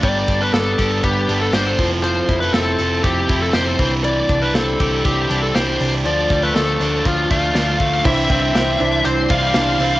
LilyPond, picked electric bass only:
\new Staff \with { instrumentName = "Picked electric bass" } { \clef bass \time 4/4 \key c \major \tempo 4 = 120 g,,8 g,,8 g,,8 g,,8 g,,8 g,,8 g,,8 f,,8~ | f,,8 f,,8 f,,8 f,,8 f,,8 f,,8 f,,8 c,8~ | c,8 c,8 c,8 c,8 c,8 c,8 c,8 c,8 | d,8 d,8 d,8 d,8 d,8 d,8 d,8 d,8 |
c,8 c,8 c,8 c,8 c,8 c,8 c,8 c,8 | }